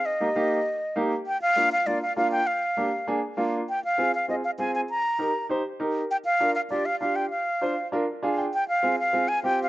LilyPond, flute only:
\new Staff \with { instrumentName = "Flute" } { \time 4/4 \key bes \mixolydian \tempo 4 = 198 ees''2. r4 | g''8 f''4 f''8 d''8 f''8 f''8 g''8 | f''2 r2 | g''8 f''4 f''8 ees''8 f''8 aes''8 aes''8 |
bes''2 r2 | g''8 f''4 f''8 d''8 f''8 f''8 g''8 | f''2 r2 | g''8 f''4 f''4 aes''8 \tuplet 3/2 { g''4 f''8 } | }